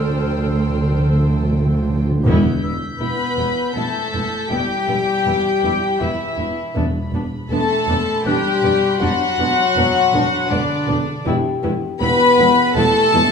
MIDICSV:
0, 0, Header, 1, 10, 480
1, 0, Start_track
1, 0, Key_signature, 1, "minor"
1, 0, Tempo, 750000
1, 8, Time_signature, 3, 2, 24, 8
1, 8523, End_track
2, 0, Start_track
2, 0, Title_t, "Violin section"
2, 0, Program_c, 0, 48
2, 0, Note_on_c, 0, 88, 54
2, 0, Note_on_c, 0, 89, 57
2, 703, Note_off_c, 0, 89, 0
2, 1183, Note_off_c, 0, 88, 0
2, 1447, Note_on_c, 0, 91, 44
2, 1448, Note_on_c, 0, 95, 47
2, 3582, Note_off_c, 0, 91, 0
2, 4062, Note_off_c, 0, 95, 0
2, 4332, Note_on_c, 0, 83, 52
2, 4809, Note_on_c, 0, 84, 50
2, 5288, Note_on_c, 0, 90, 55
2, 6942, Note_off_c, 0, 84, 0
2, 6942, Note_off_c, 0, 90, 0
2, 6944, Note_off_c, 0, 83, 0
2, 8523, End_track
3, 0, Start_track
3, 0, Title_t, "Celesta"
3, 0, Program_c, 1, 8
3, 0, Control_c, 1, 64, 127
3, 1460, Control_c, 1, 64, 0
3, 1577, Control_c, 1, 64, 127
3, 1685, Note_on_c, 1, 88, 43
3, 3101, Note_off_c, 1, 88, 0
3, 3618, Note_on_c, 1, 86, 44
3, 4338, Control_c, 1, 64, 0
3, 4444, Control_c, 1, 64, 127
3, 5027, Note_off_c, 1, 86, 0
3, 5290, Note_on_c, 1, 90, 64
3, 6703, Note_off_c, 1, 90, 0
3, 7215, Note_on_c, 1, 79, 62
3, 7216, Note_on_c, 1, 67, 49
3, 7220, Control_c, 1, 64, 0
3, 7307, Control_c, 1, 64, 127
3, 8523, Note_off_c, 1, 67, 0
3, 8523, Note_off_c, 1, 79, 0
3, 8523, End_track
4, 0, Start_track
4, 0, Title_t, "Violin section"
4, 0, Program_c, 2, 48
4, 0, Note_on_c, 2, 79, 69
4, 1297, Note_off_c, 2, 79, 0
4, 1926, Note_on_c, 2, 83, 78
4, 2381, Note_off_c, 2, 83, 0
4, 2409, Note_on_c, 2, 81, 76
4, 2886, Note_on_c, 2, 79, 92
4, 2888, Note_off_c, 2, 81, 0
4, 3828, Note_off_c, 2, 79, 0
4, 3848, Note_on_c, 2, 76, 73
4, 4328, Note_off_c, 2, 76, 0
4, 4808, Note_on_c, 2, 81, 89
4, 5262, Note_off_c, 2, 81, 0
4, 5287, Note_on_c, 2, 79, 87
4, 5767, Note_off_c, 2, 79, 0
4, 5768, Note_on_c, 2, 78, 108
4, 6709, Note_off_c, 2, 78, 0
4, 6724, Note_on_c, 2, 74, 87
4, 7206, Note_off_c, 2, 74, 0
4, 7684, Note_on_c, 2, 83, 112
4, 8140, Note_off_c, 2, 83, 0
4, 8166, Note_on_c, 2, 81, 118
4, 8523, Note_off_c, 2, 81, 0
4, 8523, End_track
5, 0, Start_track
5, 0, Title_t, "Violin section"
5, 0, Program_c, 3, 48
5, 0, Note_on_c, 3, 72, 66
5, 1294, Note_off_c, 3, 72, 0
5, 1926, Note_on_c, 3, 71, 66
5, 2381, Note_off_c, 3, 71, 0
5, 2409, Note_on_c, 3, 69, 65
5, 2889, Note_off_c, 3, 69, 0
5, 2893, Note_on_c, 3, 67, 77
5, 3831, Note_off_c, 3, 67, 0
5, 3850, Note_on_c, 3, 64, 61
5, 4329, Note_off_c, 3, 64, 0
5, 4809, Note_on_c, 3, 69, 79
5, 5263, Note_off_c, 3, 69, 0
5, 5289, Note_on_c, 3, 67, 79
5, 5765, Note_on_c, 3, 66, 89
5, 5768, Note_off_c, 3, 67, 0
5, 6707, Note_off_c, 3, 66, 0
5, 6730, Note_on_c, 3, 62, 76
5, 7209, Note_off_c, 3, 62, 0
5, 7690, Note_on_c, 3, 71, 98
5, 8143, Note_off_c, 3, 71, 0
5, 8170, Note_on_c, 3, 69, 96
5, 8523, Note_off_c, 3, 69, 0
5, 8523, End_track
6, 0, Start_track
6, 0, Title_t, "Viola section"
6, 0, Program_c, 4, 48
6, 0, Note_on_c, 4, 69, 65
6, 1295, Note_off_c, 4, 69, 0
6, 1444, Note_on_c, 4, 64, 75
6, 1445, Note_on_c, 4, 59, 73
6, 1669, Note_off_c, 4, 59, 0
6, 1669, Note_off_c, 4, 64, 0
6, 1685, Note_on_c, 4, 59, 45
6, 1686, Note_on_c, 4, 64, 45
6, 1736, Note_off_c, 4, 59, 0
6, 1737, Note_off_c, 4, 64, 0
6, 1922, Note_on_c, 4, 59, 53
6, 1922, Note_on_c, 4, 64, 48
6, 1973, Note_off_c, 4, 59, 0
6, 1973, Note_off_c, 4, 64, 0
6, 2165, Note_on_c, 4, 59, 47
6, 2165, Note_on_c, 4, 64, 45
6, 2216, Note_off_c, 4, 59, 0
6, 2216, Note_off_c, 4, 64, 0
6, 2404, Note_on_c, 4, 59, 47
6, 2406, Note_on_c, 4, 64, 51
6, 2455, Note_off_c, 4, 59, 0
6, 2457, Note_off_c, 4, 64, 0
6, 2646, Note_on_c, 4, 64, 45
6, 2647, Note_on_c, 4, 59, 45
6, 2697, Note_off_c, 4, 64, 0
6, 2699, Note_off_c, 4, 59, 0
6, 2885, Note_on_c, 4, 59, 52
6, 2885, Note_on_c, 4, 64, 52
6, 2936, Note_off_c, 4, 59, 0
6, 2936, Note_off_c, 4, 64, 0
6, 3125, Note_on_c, 4, 64, 48
6, 3126, Note_on_c, 4, 59, 45
6, 3176, Note_off_c, 4, 64, 0
6, 3177, Note_off_c, 4, 59, 0
6, 3370, Note_on_c, 4, 59, 53
6, 3371, Note_on_c, 4, 64, 52
6, 3421, Note_off_c, 4, 59, 0
6, 3422, Note_off_c, 4, 64, 0
6, 3610, Note_on_c, 4, 59, 47
6, 3610, Note_on_c, 4, 64, 47
6, 3661, Note_off_c, 4, 59, 0
6, 3661, Note_off_c, 4, 64, 0
6, 3846, Note_on_c, 4, 64, 52
6, 3847, Note_on_c, 4, 59, 55
6, 3897, Note_off_c, 4, 64, 0
6, 3899, Note_off_c, 4, 59, 0
6, 4089, Note_on_c, 4, 64, 48
6, 4090, Note_on_c, 4, 59, 51
6, 4140, Note_off_c, 4, 64, 0
6, 4141, Note_off_c, 4, 59, 0
6, 4326, Note_on_c, 4, 59, 60
6, 4328, Note_on_c, 4, 62, 59
6, 4378, Note_off_c, 4, 59, 0
6, 4380, Note_off_c, 4, 62, 0
6, 4569, Note_on_c, 4, 59, 52
6, 4571, Note_on_c, 4, 62, 52
6, 4621, Note_off_c, 4, 59, 0
6, 4622, Note_off_c, 4, 62, 0
6, 4808, Note_on_c, 4, 59, 58
6, 4809, Note_on_c, 4, 62, 57
6, 4859, Note_off_c, 4, 59, 0
6, 4860, Note_off_c, 4, 62, 0
6, 5045, Note_on_c, 4, 62, 55
6, 5046, Note_on_c, 4, 59, 51
6, 5096, Note_off_c, 4, 62, 0
6, 5097, Note_off_c, 4, 59, 0
6, 5284, Note_on_c, 4, 59, 59
6, 5285, Note_on_c, 4, 62, 62
6, 5335, Note_off_c, 4, 59, 0
6, 5337, Note_off_c, 4, 62, 0
6, 5525, Note_on_c, 4, 59, 55
6, 5527, Note_on_c, 4, 62, 54
6, 5576, Note_off_c, 4, 59, 0
6, 5579, Note_off_c, 4, 62, 0
6, 5768, Note_on_c, 4, 59, 66
6, 5768, Note_on_c, 4, 62, 69
6, 5819, Note_off_c, 4, 59, 0
6, 5819, Note_off_c, 4, 62, 0
6, 6009, Note_on_c, 4, 59, 60
6, 6009, Note_on_c, 4, 62, 57
6, 6060, Note_off_c, 4, 59, 0
6, 6060, Note_off_c, 4, 62, 0
6, 6250, Note_on_c, 4, 59, 69
6, 6252, Note_on_c, 4, 62, 69
6, 6301, Note_off_c, 4, 59, 0
6, 6303, Note_off_c, 4, 62, 0
6, 6486, Note_on_c, 4, 59, 64
6, 6487, Note_on_c, 4, 62, 62
6, 6538, Note_off_c, 4, 59, 0
6, 6538, Note_off_c, 4, 62, 0
6, 6727, Note_on_c, 4, 59, 64
6, 6728, Note_on_c, 4, 62, 72
6, 6778, Note_off_c, 4, 59, 0
6, 6780, Note_off_c, 4, 62, 0
6, 6963, Note_on_c, 4, 59, 64
6, 6965, Note_on_c, 4, 62, 64
6, 7014, Note_off_c, 4, 59, 0
6, 7016, Note_off_c, 4, 62, 0
6, 7204, Note_on_c, 4, 59, 73
6, 7205, Note_on_c, 4, 64, 78
6, 7256, Note_off_c, 4, 59, 0
6, 7256, Note_off_c, 4, 64, 0
6, 7445, Note_on_c, 4, 59, 71
6, 7446, Note_on_c, 4, 64, 63
6, 7496, Note_off_c, 4, 59, 0
6, 7497, Note_off_c, 4, 64, 0
6, 7684, Note_on_c, 4, 59, 74
6, 7687, Note_on_c, 4, 64, 74
6, 7736, Note_off_c, 4, 59, 0
6, 7738, Note_off_c, 4, 64, 0
6, 7925, Note_on_c, 4, 64, 68
6, 7927, Note_on_c, 4, 59, 68
6, 7976, Note_off_c, 4, 64, 0
6, 7978, Note_off_c, 4, 59, 0
6, 8168, Note_on_c, 4, 59, 74
6, 8169, Note_on_c, 4, 64, 77
6, 8219, Note_off_c, 4, 59, 0
6, 8220, Note_off_c, 4, 64, 0
6, 8409, Note_on_c, 4, 59, 73
6, 8410, Note_on_c, 4, 64, 69
6, 8460, Note_off_c, 4, 59, 0
6, 8461, Note_off_c, 4, 64, 0
6, 8523, End_track
7, 0, Start_track
7, 0, Title_t, "French horn section"
7, 0, Program_c, 5, 60
7, 1921, Note_on_c, 5, 59, 71
7, 2379, Note_off_c, 5, 59, 0
7, 2407, Note_on_c, 5, 57, 67
7, 2886, Note_on_c, 5, 55, 73
7, 2887, Note_off_c, 5, 57, 0
7, 3847, Note_off_c, 5, 55, 0
7, 3853, Note_on_c, 5, 52, 62
7, 4330, Note_off_c, 5, 52, 0
7, 4805, Note_on_c, 5, 57, 84
7, 5261, Note_off_c, 5, 57, 0
7, 5291, Note_on_c, 5, 55, 81
7, 5769, Note_off_c, 5, 55, 0
7, 5770, Note_on_c, 5, 54, 98
7, 6710, Note_off_c, 5, 54, 0
7, 6730, Note_on_c, 5, 50, 79
7, 7199, Note_off_c, 5, 50, 0
7, 7687, Note_on_c, 5, 59, 103
7, 8142, Note_off_c, 5, 59, 0
7, 8170, Note_on_c, 5, 57, 111
7, 8523, Note_off_c, 5, 57, 0
7, 8523, End_track
8, 0, Start_track
8, 0, Title_t, "Timpani"
8, 0, Program_c, 6, 47
8, 7, Note_on_c, 6, 50, 47
8, 50, Note_off_c, 6, 50, 0
8, 58, Note_on_c, 6, 50, 45
8, 100, Note_off_c, 6, 50, 0
8, 107, Note_on_c, 6, 50, 47
8, 144, Note_off_c, 6, 50, 0
8, 152, Note_on_c, 6, 50, 49
8, 193, Note_off_c, 6, 50, 0
8, 201, Note_on_c, 6, 50, 50
8, 241, Note_off_c, 6, 50, 0
8, 249, Note_on_c, 6, 50, 51
8, 290, Note_off_c, 6, 50, 0
8, 298, Note_on_c, 6, 50, 50
8, 339, Note_off_c, 6, 50, 0
8, 347, Note_on_c, 6, 50, 49
8, 385, Note_off_c, 6, 50, 0
8, 392, Note_on_c, 6, 50, 55
8, 437, Note_off_c, 6, 50, 0
8, 444, Note_on_c, 6, 50, 54
8, 478, Note_off_c, 6, 50, 0
8, 486, Note_on_c, 6, 50, 51
8, 527, Note_off_c, 6, 50, 0
8, 535, Note_on_c, 6, 50, 56
8, 576, Note_off_c, 6, 50, 0
8, 584, Note_on_c, 6, 50, 59
8, 624, Note_off_c, 6, 50, 0
8, 631, Note_on_c, 6, 50, 58
8, 671, Note_off_c, 6, 50, 0
8, 679, Note_on_c, 6, 50, 59
8, 716, Note_off_c, 6, 50, 0
8, 724, Note_on_c, 6, 50, 57
8, 767, Note_off_c, 6, 50, 0
8, 775, Note_on_c, 6, 50, 63
8, 814, Note_off_c, 6, 50, 0
8, 822, Note_on_c, 6, 50, 62
8, 863, Note_off_c, 6, 50, 0
8, 870, Note_on_c, 6, 50, 61
8, 907, Note_off_c, 6, 50, 0
8, 915, Note_on_c, 6, 50, 64
8, 959, Note_off_c, 6, 50, 0
8, 967, Note_on_c, 6, 50, 66
8, 1005, Note_off_c, 6, 50, 0
8, 1013, Note_on_c, 6, 50, 70
8, 1053, Note_off_c, 6, 50, 0
8, 1061, Note_on_c, 6, 50, 69
8, 1103, Note_off_c, 6, 50, 0
8, 1111, Note_on_c, 6, 50, 77
8, 1151, Note_off_c, 6, 50, 0
8, 1159, Note_on_c, 6, 50, 74
8, 1202, Note_off_c, 6, 50, 0
8, 1210, Note_on_c, 6, 50, 66
8, 1247, Note_off_c, 6, 50, 0
8, 1254, Note_on_c, 6, 50, 66
8, 1296, Note_off_c, 6, 50, 0
8, 1304, Note_on_c, 6, 50, 73
8, 1343, Note_off_c, 6, 50, 0
8, 1351, Note_on_c, 6, 50, 72
8, 1389, Note_off_c, 6, 50, 0
8, 1397, Note_on_c, 6, 50, 73
8, 1443, Note_off_c, 6, 50, 0
8, 1446, Note_on_c, 6, 40, 78
8, 2141, Note_off_c, 6, 40, 0
8, 4328, Note_on_c, 6, 40, 86
8, 5022, Note_off_c, 6, 40, 0
8, 8523, End_track
9, 0, Start_track
9, 0, Title_t, "Cello section"
9, 0, Program_c, 7, 48
9, 0, Note_on_c, 7, 38, 72
9, 1295, Note_off_c, 7, 38, 0
9, 1445, Note_on_c, 7, 40, 78
9, 1669, Note_off_c, 7, 40, 0
9, 1687, Note_on_c, 7, 40, 50
9, 1738, Note_off_c, 7, 40, 0
9, 1925, Note_on_c, 7, 40, 54
9, 1976, Note_off_c, 7, 40, 0
9, 2167, Note_on_c, 7, 40, 52
9, 2218, Note_off_c, 7, 40, 0
9, 2404, Note_on_c, 7, 40, 50
9, 2455, Note_off_c, 7, 40, 0
9, 2646, Note_on_c, 7, 40, 55
9, 2698, Note_off_c, 7, 40, 0
9, 2888, Note_on_c, 7, 40, 61
9, 2939, Note_off_c, 7, 40, 0
9, 3131, Note_on_c, 7, 40, 56
9, 3182, Note_off_c, 7, 40, 0
9, 3369, Note_on_c, 7, 40, 59
9, 3420, Note_off_c, 7, 40, 0
9, 3610, Note_on_c, 7, 40, 57
9, 3661, Note_off_c, 7, 40, 0
9, 3851, Note_on_c, 7, 40, 58
9, 3902, Note_off_c, 7, 40, 0
9, 4090, Note_on_c, 7, 40, 58
9, 4141, Note_off_c, 7, 40, 0
9, 4332, Note_on_c, 7, 40, 61
9, 4383, Note_off_c, 7, 40, 0
9, 4571, Note_on_c, 7, 40, 59
9, 4622, Note_off_c, 7, 40, 0
9, 4811, Note_on_c, 7, 40, 65
9, 4862, Note_off_c, 7, 40, 0
9, 5050, Note_on_c, 7, 40, 62
9, 5101, Note_off_c, 7, 40, 0
9, 5289, Note_on_c, 7, 40, 58
9, 5341, Note_off_c, 7, 40, 0
9, 5530, Note_on_c, 7, 40, 69
9, 5581, Note_off_c, 7, 40, 0
9, 5770, Note_on_c, 7, 40, 71
9, 5821, Note_off_c, 7, 40, 0
9, 6007, Note_on_c, 7, 40, 70
9, 6058, Note_off_c, 7, 40, 0
9, 6248, Note_on_c, 7, 40, 73
9, 6299, Note_off_c, 7, 40, 0
9, 6487, Note_on_c, 7, 40, 69
9, 6538, Note_off_c, 7, 40, 0
9, 6728, Note_on_c, 7, 40, 71
9, 6779, Note_off_c, 7, 40, 0
9, 6969, Note_on_c, 7, 40, 74
9, 7020, Note_off_c, 7, 40, 0
9, 7211, Note_on_c, 7, 40, 83
9, 7262, Note_off_c, 7, 40, 0
9, 7449, Note_on_c, 7, 40, 81
9, 7500, Note_off_c, 7, 40, 0
9, 7689, Note_on_c, 7, 40, 78
9, 7741, Note_off_c, 7, 40, 0
9, 7932, Note_on_c, 7, 40, 83
9, 7984, Note_off_c, 7, 40, 0
9, 8171, Note_on_c, 7, 40, 82
9, 8222, Note_off_c, 7, 40, 0
9, 8409, Note_on_c, 7, 40, 79
9, 8460, Note_off_c, 7, 40, 0
9, 8523, End_track
10, 0, Start_track
10, 0, Title_t, "Double bass section"
10, 0, Program_c, 8, 48
10, 0, Note_on_c, 8, 38, 75
10, 1295, Note_off_c, 8, 38, 0
10, 1447, Note_on_c, 8, 28, 83
10, 1670, Note_off_c, 8, 28, 0
10, 1684, Note_on_c, 8, 28, 50
10, 1735, Note_off_c, 8, 28, 0
10, 1926, Note_on_c, 8, 28, 55
10, 1977, Note_off_c, 8, 28, 0
10, 2165, Note_on_c, 8, 28, 60
10, 2216, Note_off_c, 8, 28, 0
10, 2404, Note_on_c, 8, 28, 54
10, 2456, Note_off_c, 8, 28, 0
10, 2645, Note_on_c, 8, 28, 57
10, 2696, Note_off_c, 8, 28, 0
10, 2886, Note_on_c, 8, 28, 62
10, 2937, Note_off_c, 8, 28, 0
10, 3126, Note_on_c, 8, 28, 57
10, 3177, Note_off_c, 8, 28, 0
10, 3367, Note_on_c, 8, 28, 57
10, 3418, Note_off_c, 8, 28, 0
10, 3606, Note_on_c, 8, 28, 58
10, 3658, Note_off_c, 8, 28, 0
10, 3846, Note_on_c, 8, 28, 60
10, 3897, Note_off_c, 8, 28, 0
10, 4084, Note_on_c, 8, 28, 57
10, 4136, Note_off_c, 8, 28, 0
10, 4322, Note_on_c, 8, 28, 70
10, 4373, Note_off_c, 8, 28, 0
10, 4562, Note_on_c, 8, 28, 58
10, 4613, Note_off_c, 8, 28, 0
10, 4804, Note_on_c, 8, 28, 64
10, 4855, Note_off_c, 8, 28, 0
10, 5046, Note_on_c, 8, 28, 70
10, 5097, Note_off_c, 8, 28, 0
10, 5288, Note_on_c, 8, 28, 66
10, 5340, Note_off_c, 8, 28, 0
10, 5526, Note_on_c, 8, 28, 61
10, 5577, Note_off_c, 8, 28, 0
10, 5766, Note_on_c, 8, 28, 76
10, 5817, Note_off_c, 8, 28, 0
10, 6006, Note_on_c, 8, 28, 64
10, 6058, Note_off_c, 8, 28, 0
10, 6247, Note_on_c, 8, 28, 75
10, 6298, Note_off_c, 8, 28, 0
10, 6487, Note_on_c, 8, 28, 78
10, 6538, Note_off_c, 8, 28, 0
10, 6726, Note_on_c, 8, 28, 75
10, 6777, Note_off_c, 8, 28, 0
10, 6967, Note_on_c, 8, 28, 77
10, 7019, Note_off_c, 8, 28, 0
10, 7208, Note_on_c, 8, 28, 89
10, 7259, Note_off_c, 8, 28, 0
10, 7447, Note_on_c, 8, 28, 78
10, 7499, Note_off_c, 8, 28, 0
10, 7690, Note_on_c, 8, 28, 85
10, 7741, Note_off_c, 8, 28, 0
10, 7926, Note_on_c, 8, 28, 90
10, 7977, Note_off_c, 8, 28, 0
10, 8168, Note_on_c, 8, 28, 85
10, 8219, Note_off_c, 8, 28, 0
10, 8407, Note_on_c, 8, 28, 87
10, 8458, Note_off_c, 8, 28, 0
10, 8523, End_track
0, 0, End_of_file